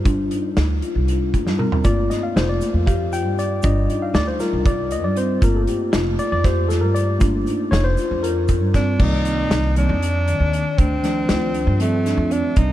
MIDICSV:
0, 0, Header, 1, 6, 480
1, 0, Start_track
1, 0, Key_signature, -2, "minor"
1, 0, Tempo, 510638
1, 56, Time_signature, 7, 3, 24, 8
1, 11962, End_track
2, 0, Start_track
2, 0, Title_t, "Tine electric piano"
2, 0, Program_c, 0, 4
2, 46, Note_on_c, 0, 55, 50
2, 47, Note_on_c, 0, 62, 47
2, 54, Note_on_c, 0, 65, 57
2, 736, Note_off_c, 0, 55, 0
2, 736, Note_off_c, 0, 62, 0
2, 740, Note_off_c, 0, 65, 0
2, 1492, Note_on_c, 0, 70, 74
2, 1731, Note_on_c, 0, 57, 47
2, 1734, Note_on_c, 0, 74, 92
2, 1736, Note_on_c, 0, 58, 50
2, 1740, Note_on_c, 0, 65, 53
2, 1742, Note_off_c, 0, 70, 0
2, 1975, Note_on_c, 0, 75, 74
2, 1983, Note_off_c, 0, 74, 0
2, 2098, Note_on_c, 0, 77, 77
2, 2100, Note_off_c, 0, 75, 0
2, 2209, Note_off_c, 0, 77, 0
2, 2220, Note_on_c, 0, 72, 84
2, 2330, Note_off_c, 0, 72, 0
2, 2341, Note_on_c, 0, 74, 80
2, 2418, Note_off_c, 0, 57, 0
2, 2421, Note_off_c, 0, 58, 0
2, 2423, Note_off_c, 0, 65, 0
2, 2459, Note_on_c, 0, 57, 45
2, 2463, Note_on_c, 0, 58, 41
2, 2467, Note_on_c, 0, 65, 49
2, 2563, Note_off_c, 0, 74, 0
2, 2675, Note_off_c, 0, 57, 0
2, 2677, Note_off_c, 0, 58, 0
2, 2679, Note_off_c, 0, 65, 0
2, 2696, Note_on_c, 0, 77, 81
2, 2941, Note_on_c, 0, 79, 92
2, 2944, Note_off_c, 0, 77, 0
2, 3184, Note_on_c, 0, 74, 85
2, 3187, Note_off_c, 0, 79, 0
2, 3411, Note_off_c, 0, 74, 0
2, 3413, Note_on_c, 0, 55, 51
2, 3422, Note_on_c, 0, 74, 52
2, 3424, Note_on_c, 0, 75, 86
2, 3426, Note_on_c, 0, 65, 57
2, 3782, Note_on_c, 0, 77, 80
2, 3792, Note_off_c, 0, 75, 0
2, 3888, Note_off_c, 0, 74, 0
2, 3900, Note_on_c, 0, 74, 90
2, 3904, Note_off_c, 0, 77, 0
2, 4011, Note_off_c, 0, 74, 0
2, 4020, Note_on_c, 0, 72, 80
2, 4117, Note_off_c, 0, 55, 0
2, 4124, Note_off_c, 0, 65, 0
2, 4129, Note_on_c, 0, 55, 46
2, 4131, Note_off_c, 0, 72, 0
2, 4131, Note_on_c, 0, 62, 46
2, 4136, Note_on_c, 0, 65, 52
2, 4138, Note_on_c, 0, 70, 77
2, 4349, Note_off_c, 0, 55, 0
2, 4350, Note_off_c, 0, 62, 0
2, 4353, Note_off_c, 0, 65, 0
2, 4383, Note_on_c, 0, 74, 89
2, 4385, Note_off_c, 0, 70, 0
2, 4625, Note_on_c, 0, 75, 88
2, 4628, Note_off_c, 0, 74, 0
2, 4740, Note_on_c, 0, 74, 80
2, 4745, Note_off_c, 0, 75, 0
2, 4863, Note_off_c, 0, 74, 0
2, 4865, Note_on_c, 0, 72, 83
2, 5093, Note_on_c, 0, 57, 55
2, 5100, Note_on_c, 0, 58, 48
2, 5104, Note_on_c, 0, 65, 57
2, 5109, Note_off_c, 0, 72, 0
2, 5114, Note_on_c, 0, 70, 84
2, 5224, Note_on_c, 0, 69, 72
2, 5230, Note_off_c, 0, 70, 0
2, 5277, Note_off_c, 0, 69, 0
2, 5346, Note_on_c, 0, 67, 63
2, 5565, Note_off_c, 0, 67, 0
2, 5820, Note_on_c, 0, 74, 98
2, 5931, Note_off_c, 0, 74, 0
2, 5943, Note_on_c, 0, 74, 85
2, 6052, Note_off_c, 0, 74, 0
2, 6057, Note_on_c, 0, 72, 84
2, 6281, Note_off_c, 0, 72, 0
2, 6284, Note_on_c, 0, 69, 73
2, 6403, Note_on_c, 0, 70, 81
2, 6415, Note_off_c, 0, 69, 0
2, 6522, Note_off_c, 0, 70, 0
2, 6528, Note_on_c, 0, 74, 86
2, 6738, Note_off_c, 0, 57, 0
2, 6742, Note_off_c, 0, 58, 0
2, 6744, Note_off_c, 0, 65, 0
2, 6756, Note_off_c, 0, 74, 0
2, 6758, Note_on_c, 0, 57, 57
2, 6766, Note_on_c, 0, 58, 51
2, 6770, Note_on_c, 0, 65, 62
2, 7247, Note_on_c, 0, 73, 96
2, 7371, Note_on_c, 0, 72, 101
2, 7377, Note_off_c, 0, 73, 0
2, 7452, Note_off_c, 0, 57, 0
2, 7456, Note_off_c, 0, 58, 0
2, 7458, Note_off_c, 0, 65, 0
2, 7735, Note_on_c, 0, 70, 75
2, 7745, Note_off_c, 0, 72, 0
2, 8419, Note_off_c, 0, 70, 0
2, 8453, Note_on_c, 0, 55, 61
2, 8454, Note_on_c, 0, 51, 73
2, 8455, Note_on_c, 0, 58, 62
2, 8458, Note_on_c, 0, 74, 79
2, 9128, Note_off_c, 0, 51, 0
2, 9128, Note_off_c, 0, 55, 0
2, 9129, Note_off_c, 0, 58, 0
2, 9130, Note_off_c, 0, 74, 0
2, 9176, Note_on_c, 0, 55, 58
2, 9177, Note_on_c, 0, 51, 64
2, 9178, Note_on_c, 0, 58, 52
2, 9178, Note_on_c, 0, 63, 65
2, 9345, Note_off_c, 0, 55, 0
2, 9346, Note_off_c, 0, 51, 0
2, 9346, Note_off_c, 0, 58, 0
2, 9346, Note_off_c, 0, 63, 0
2, 10373, Note_on_c, 0, 60, 59
2, 10374, Note_on_c, 0, 53, 67
2, 10374, Note_on_c, 0, 57, 56
2, 10375, Note_on_c, 0, 62, 67
2, 11048, Note_off_c, 0, 53, 0
2, 11048, Note_off_c, 0, 57, 0
2, 11048, Note_off_c, 0, 60, 0
2, 11049, Note_off_c, 0, 62, 0
2, 11095, Note_on_c, 0, 57, 56
2, 11097, Note_on_c, 0, 53, 58
2, 11097, Note_on_c, 0, 60, 52
2, 11097, Note_on_c, 0, 62, 67
2, 11768, Note_off_c, 0, 57, 0
2, 11769, Note_off_c, 0, 53, 0
2, 11769, Note_off_c, 0, 60, 0
2, 11769, Note_off_c, 0, 62, 0
2, 11962, End_track
3, 0, Start_track
3, 0, Title_t, "Marimba"
3, 0, Program_c, 1, 12
3, 41, Note_on_c, 1, 62, 85
3, 211, Note_off_c, 1, 62, 0
3, 291, Note_on_c, 1, 63, 68
3, 623, Note_off_c, 1, 63, 0
3, 766, Note_on_c, 1, 65, 70
3, 935, Note_off_c, 1, 65, 0
3, 1012, Note_on_c, 1, 65, 71
3, 1344, Note_off_c, 1, 65, 0
3, 1484, Note_on_c, 1, 60, 69
3, 1654, Note_off_c, 1, 60, 0
3, 1730, Note_on_c, 1, 65, 84
3, 2062, Note_off_c, 1, 65, 0
3, 2204, Note_on_c, 1, 65, 76
3, 2539, Note_off_c, 1, 65, 0
3, 2691, Note_on_c, 1, 67, 82
3, 2858, Note_off_c, 1, 67, 0
3, 2931, Note_on_c, 1, 65, 66
3, 3263, Note_off_c, 1, 65, 0
3, 3412, Note_on_c, 1, 62, 88
3, 3579, Note_off_c, 1, 62, 0
3, 3656, Note_on_c, 1, 63, 72
3, 3986, Note_off_c, 1, 63, 0
3, 4132, Note_on_c, 1, 65, 75
3, 4299, Note_off_c, 1, 65, 0
3, 4372, Note_on_c, 1, 65, 78
3, 4704, Note_off_c, 1, 65, 0
3, 4849, Note_on_c, 1, 60, 79
3, 5017, Note_off_c, 1, 60, 0
3, 5085, Note_on_c, 1, 65, 90
3, 5419, Note_off_c, 1, 65, 0
3, 5565, Note_on_c, 1, 65, 83
3, 5899, Note_off_c, 1, 65, 0
3, 6051, Note_on_c, 1, 67, 77
3, 6218, Note_off_c, 1, 67, 0
3, 6295, Note_on_c, 1, 65, 75
3, 6626, Note_off_c, 1, 65, 0
3, 6771, Note_on_c, 1, 62, 91
3, 6938, Note_off_c, 1, 62, 0
3, 7014, Note_on_c, 1, 63, 70
3, 7345, Note_off_c, 1, 63, 0
3, 7497, Note_on_c, 1, 65, 77
3, 7662, Note_off_c, 1, 65, 0
3, 7735, Note_on_c, 1, 65, 83
3, 8066, Note_off_c, 1, 65, 0
3, 8214, Note_on_c, 1, 60, 86
3, 8380, Note_off_c, 1, 60, 0
3, 8696, Note_on_c, 1, 60, 64
3, 9026, Note_off_c, 1, 60, 0
3, 9182, Note_on_c, 1, 60, 68
3, 9511, Note_off_c, 1, 60, 0
3, 9660, Note_on_c, 1, 51, 72
3, 9989, Note_off_c, 1, 51, 0
3, 10140, Note_on_c, 1, 62, 86
3, 10469, Note_off_c, 1, 62, 0
3, 10614, Note_on_c, 1, 65, 80
3, 10780, Note_off_c, 1, 65, 0
3, 10852, Note_on_c, 1, 62, 69
3, 11019, Note_off_c, 1, 62, 0
3, 11089, Note_on_c, 1, 60, 84
3, 11257, Note_off_c, 1, 60, 0
3, 11325, Note_on_c, 1, 62, 73
3, 11494, Note_off_c, 1, 62, 0
3, 11566, Note_on_c, 1, 60, 75
3, 11735, Note_off_c, 1, 60, 0
3, 11962, End_track
4, 0, Start_track
4, 0, Title_t, "Tenor saxophone"
4, 0, Program_c, 2, 66
4, 8231, Note_on_c, 2, 62, 97
4, 8478, Note_on_c, 2, 63, 112
4, 8492, Note_off_c, 2, 62, 0
4, 9185, Note_off_c, 2, 63, 0
4, 9191, Note_on_c, 2, 62, 105
4, 10136, Note_on_c, 2, 60, 101
4, 10150, Note_off_c, 2, 62, 0
4, 11097, Note_off_c, 2, 60, 0
4, 11105, Note_on_c, 2, 57, 95
4, 11585, Note_on_c, 2, 62, 91
4, 11599, Note_off_c, 2, 57, 0
4, 11824, Note_on_c, 2, 63, 87
4, 11838, Note_off_c, 2, 62, 0
4, 11962, Note_off_c, 2, 63, 0
4, 11962, End_track
5, 0, Start_track
5, 0, Title_t, "Upright bass"
5, 0, Program_c, 3, 32
5, 50, Note_on_c, 3, 31, 82
5, 263, Note_off_c, 3, 31, 0
5, 535, Note_on_c, 3, 38, 83
5, 746, Note_off_c, 3, 38, 0
5, 896, Note_on_c, 3, 36, 76
5, 1378, Note_off_c, 3, 36, 0
5, 1378, Note_on_c, 3, 43, 83
5, 1692, Note_off_c, 3, 43, 0
5, 1738, Note_on_c, 3, 31, 85
5, 1948, Note_off_c, 3, 31, 0
5, 2221, Note_on_c, 3, 29, 89
5, 2429, Note_off_c, 3, 29, 0
5, 2573, Note_on_c, 3, 41, 71
5, 3050, Note_off_c, 3, 41, 0
5, 3050, Note_on_c, 3, 43, 83
5, 3368, Note_off_c, 3, 43, 0
5, 3418, Note_on_c, 3, 31, 94
5, 3628, Note_off_c, 3, 31, 0
5, 3891, Note_on_c, 3, 38, 95
5, 4104, Note_off_c, 3, 38, 0
5, 4258, Note_on_c, 3, 36, 76
5, 4735, Note_off_c, 3, 36, 0
5, 4735, Note_on_c, 3, 43, 92
5, 5051, Note_off_c, 3, 43, 0
5, 5096, Note_on_c, 3, 31, 96
5, 5307, Note_off_c, 3, 31, 0
5, 5577, Note_on_c, 3, 29, 92
5, 5787, Note_off_c, 3, 29, 0
5, 5942, Note_on_c, 3, 41, 86
5, 6421, Note_off_c, 3, 41, 0
5, 6421, Note_on_c, 3, 43, 93
5, 6735, Note_off_c, 3, 43, 0
5, 6780, Note_on_c, 3, 31, 87
5, 6989, Note_off_c, 3, 31, 0
5, 7255, Note_on_c, 3, 29, 91
5, 7466, Note_off_c, 3, 29, 0
5, 7623, Note_on_c, 3, 41, 80
5, 8107, Note_off_c, 3, 41, 0
5, 8107, Note_on_c, 3, 43, 99
5, 8418, Note_off_c, 3, 43, 0
5, 8456, Note_on_c, 3, 36, 91
5, 8877, Note_off_c, 3, 36, 0
5, 8931, Note_on_c, 3, 36, 82
5, 9249, Note_off_c, 3, 36, 0
5, 9297, Note_on_c, 3, 41, 94
5, 9717, Note_off_c, 3, 41, 0
5, 9774, Note_on_c, 3, 39, 84
5, 9986, Note_off_c, 3, 39, 0
5, 10136, Note_on_c, 3, 38, 82
5, 10556, Note_off_c, 3, 38, 0
5, 10616, Note_on_c, 3, 38, 84
5, 10931, Note_off_c, 3, 38, 0
5, 10968, Note_on_c, 3, 43, 88
5, 11392, Note_off_c, 3, 43, 0
5, 11442, Note_on_c, 3, 41, 92
5, 11659, Note_off_c, 3, 41, 0
5, 11813, Note_on_c, 3, 36, 86
5, 11962, Note_off_c, 3, 36, 0
5, 11962, End_track
6, 0, Start_track
6, 0, Title_t, "Drums"
6, 50, Note_on_c, 9, 42, 74
6, 52, Note_on_c, 9, 36, 108
6, 144, Note_off_c, 9, 42, 0
6, 146, Note_off_c, 9, 36, 0
6, 291, Note_on_c, 9, 42, 56
6, 385, Note_off_c, 9, 42, 0
6, 533, Note_on_c, 9, 38, 101
6, 533, Note_on_c, 9, 42, 79
6, 627, Note_off_c, 9, 38, 0
6, 627, Note_off_c, 9, 42, 0
6, 774, Note_on_c, 9, 42, 56
6, 868, Note_off_c, 9, 42, 0
6, 1017, Note_on_c, 9, 42, 82
6, 1111, Note_off_c, 9, 42, 0
6, 1258, Note_on_c, 9, 36, 70
6, 1259, Note_on_c, 9, 42, 60
6, 1352, Note_off_c, 9, 36, 0
6, 1353, Note_off_c, 9, 42, 0
6, 1378, Note_on_c, 9, 38, 52
6, 1472, Note_off_c, 9, 38, 0
6, 1497, Note_on_c, 9, 47, 57
6, 1591, Note_off_c, 9, 47, 0
6, 1619, Note_on_c, 9, 43, 90
6, 1713, Note_off_c, 9, 43, 0
6, 1733, Note_on_c, 9, 82, 52
6, 1735, Note_on_c, 9, 42, 81
6, 1737, Note_on_c, 9, 36, 93
6, 1827, Note_off_c, 9, 82, 0
6, 1829, Note_off_c, 9, 42, 0
6, 1831, Note_off_c, 9, 36, 0
6, 1983, Note_on_c, 9, 38, 31
6, 1983, Note_on_c, 9, 42, 61
6, 2077, Note_off_c, 9, 38, 0
6, 2077, Note_off_c, 9, 42, 0
6, 2226, Note_on_c, 9, 38, 101
6, 2226, Note_on_c, 9, 42, 74
6, 2320, Note_off_c, 9, 38, 0
6, 2320, Note_off_c, 9, 42, 0
6, 2456, Note_on_c, 9, 82, 48
6, 2465, Note_on_c, 9, 42, 55
6, 2550, Note_off_c, 9, 82, 0
6, 2559, Note_off_c, 9, 42, 0
6, 2701, Note_on_c, 9, 36, 99
6, 2706, Note_on_c, 9, 42, 79
6, 2795, Note_off_c, 9, 36, 0
6, 2800, Note_off_c, 9, 42, 0
6, 2939, Note_on_c, 9, 82, 48
6, 2947, Note_on_c, 9, 42, 56
6, 3033, Note_off_c, 9, 82, 0
6, 3041, Note_off_c, 9, 42, 0
6, 3178, Note_on_c, 9, 82, 19
6, 3188, Note_on_c, 9, 42, 58
6, 3272, Note_off_c, 9, 82, 0
6, 3282, Note_off_c, 9, 42, 0
6, 3408, Note_on_c, 9, 82, 54
6, 3421, Note_on_c, 9, 36, 99
6, 3424, Note_on_c, 9, 42, 74
6, 3502, Note_off_c, 9, 82, 0
6, 3515, Note_off_c, 9, 36, 0
6, 3518, Note_off_c, 9, 42, 0
6, 3664, Note_on_c, 9, 42, 58
6, 3758, Note_off_c, 9, 42, 0
6, 3898, Note_on_c, 9, 38, 107
6, 3898, Note_on_c, 9, 42, 75
6, 3992, Note_off_c, 9, 38, 0
6, 3992, Note_off_c, 9, 42, 0
6, 4135, Note_on_c, 9, 82, 43
6, 4137, Note_on_c, 9, 38, 29
6, 4137, Note_on_c, 9, 42, 53
6, 4229, Note_off_c, 9, 82, 0
6, 4231, Note_off_c, 9, 38, 0
6, 4231, Note_off_c, 9, 42, 0
6, 4377, Note_on_c, 9, 36, 110
6, 4377, Note_on_c, 9, 42, 74
6, 4471, Note_off_c, 9, 36, 0
6, 4471, Note_off_c, 9, 42, 0
6, 4613, Note_on_c, 9, 42, 63
6, 4620, Note_on_c, 9, 82, 41
6, 4707, Note_off_c, 9, 42, 0
6, 4714, Note_off_c, 9, 82, 0
6, 4855, Note_on_c, 9, 42, 58
6, 4861, Note_on_c, 9, 82, 17
6, 4949, Note_off_c, 9, 42, 0
6, 4955, Note_off_c, 9, 82, 0
6, 5093, Note_on_c, 9, 42, 85
6, 5095, Note_on_c, 9, 36, 105
6, 5104, Note_on_c, 9, 82, 48
6, 5187, Note_off_c, 9, 42, 0
6, 5189, Note_off_c, 9, 36, 0
6, 5198, Note_off_c, 9, 82, 0
6, 5333, Note_on_c, 9, 42, 60
6, 5427, Note_off_c, 9, 42, 0
6, 5573, Note_on_c, 9, 38, 105
6, 5573, Note_on_c, 9, 42, 83
6, 5667, Note_off_c, 9, 38, 0
6, 5667, Note_off_c, 9, 42, 0
6, 5817, Note_on_c, 9, 42, 61
6, 5820, Note_on_c, 9, 82, 42
6, 5911, Note_off_c, 9, 42, 0
6, 5914, Note_off_c, 9, 82, 0
6, 6057, Note_on_c, 9, 36, 97
6, 6059, Note_on_c, 9, 38, 35
6, 6059, Note_on_c, 9, 42, 86
6, 6151, Note_off_c, 9, 36, 0
6, 6153, Note_off_c, 9, 38, 0
6, 6153, Note_off_c, 9, 42, 0
6, 6300, Note_on_c, 9, 82, 46
6, 6302, Note_on_c, 9, 38, 34
6, 6302, Note_on_c, 9, 42, 59
6, 6394, Note_off_c, 9, 82, 0
6, 6396, Note_off_c, 9, 38, 0
6, 6396, Note_off_c, 9, 42, 0
6, 6540, Note_on_c, 9, 42, 63
6, 6540, Note_on_c, 9, 82, 18
6, 6634, Note_off_c, 9, 42, 0
6, 6634, Note_off_c, 9, 82, 0
6, 6774, Note_on_c, 9, 82, 58
6, 6779, Note_on_c, 9, 36, 108
6, 6780, Note_on_c, 9, 42, 83
6, 6868, Note_off_c, 9, 82, 0
6, 6873, Note_off_c, 9, 36, 0
6, 6874, Note_off_c, 9, 42, 0
6, 7016, Note_on_c, 9, 82, 18
6, 7024, Note_on_c, 9, 42, 59
6, 7110, Note_off_c, 9, 82, 0
6, 7118, Note_off_c, 9, 42, 0
6, 7267, Note_on_c, 9, 38, 102
6, 7267, Note_on_c, 9, 42, 79
6, 7361, Note_off_c, 9, 38, 0
6, 7361, Note_off_c, 9, 42, 0
6, 7494, Note_on_c, 9, 82, 43
6, 7508, Note_on_c, 9, 42, 53
6, 7588, Note_off_c, 9, 82, 0
6, 7602, Note_off_c, 9, 42, 0
6, 7745, Note_on_c, 9, 42, 77
6, 7839, Note_off_c, 9, 42, 0
6, 7973, Note_on_c, 9, 82, 44
6, 7979, Note_on_c, 9, 36, 77
6, 7982, Note_on_c, 9, 42, 58
6, 8067, Note_off_c, 9, 82, 0
6, 8073, Note_off_c, 9, 36, 0
6, 8076, Note_off_c, 9, 42, 0
6, 8218, Note_on_c, 9, 36, 82
6, 8219, Note_on_c, 9, 38, 33
6, 8219, Note_on_c, 9, 42, 61
6, 8312, Note_off_c, 9, 36, 0
6, 8313, Note_off_c, 9, 38, 0
6, 8313, Note_off_c, 9, 42, 0
6, 8456, Note_on_c, 9, 49, 101
6, 8457, Note_on_c, 9, 36, 102
6, 8550, Note_off_c, 9, 49, 0
6, 8551, Note_off_c, 9, 36, 0
6, 8695, Note_on_c, 9, 42, 63
6, 8789, Note_off_c, 9, 42, 0
6, 8939, Note_on_c, 9, 38, 105
6, 8939, Note_on_c, 9, 42, 85
6, 9033, Note_off_c, 9, 38, 0
6, 9033, Note_off_c, 9, 42, 0
6, 9178, Note_on_c, 9, 42, 59
6, 9272, Note_off_c, 9, 42, 0
6, 9423, Note_on_c, 9, 42, 84
6, 9517, Note_off_c, 9, 42, 0
6, 9659, Note_on_c, 9, 42, 57
6, 9753, Note_off_c, 9, 42, 0
6, 9901, Note_on_c, 9, 42, 60
6, 9995, Note_off_c, 9, 42, 0
6, 10137, Note_on_c, 9, 36, 104
6, 10140, Note_on_c, 9, 42, 82
6, 10231, Note_off_c, 9, 36, 0
6, 10234, Note_off_c, 9, 42, 0
6, 10375, Note_on_c, 9, 38, 33
6, 10375, Note_on_c, 9, 42, 60
6, 10469, Note_off_c, 9, 38, 0
6, 10469, Note_off_c, 9, 42, 0
6, 10612, Note_on_c, 9, 38, 104
6, 10612, Note_on_c, 9, 42, 72
6, 10706, Note_off_c, 9, 38, 0
6, 10706, Note_off_c, 9, 42, 0
6, 10852, Note_on_c, 9, 42, 54
6, 10946, Note_off_c, 9, 42, 0
6, 11092, Note_on_c, 9, 42, 76
6, 11186, Note_off_c, 9, 42, 0
6, 11336, Note_on_c, 9, 38, 32
6, 11336, Note_on_c, 9, 42, 57
6, 11430, Note_off_c, 9, 38, 0
6, 11430, Note_off_c, 9, 42, 0
6, 11573, Note_on_c, 9, 42, 55
6, 11667, Note_off_c, 9, 42, 0
6, 11808, Note_on_c, 9, 42, 78
6, 11814, Note_on_c, 9, 36, 98
6, 11902, Note_off_c, 9, 42, 0
6, 11908, Note_off_c, 9, 36, 0
6, 11962, End_track
0, 0, End_of_file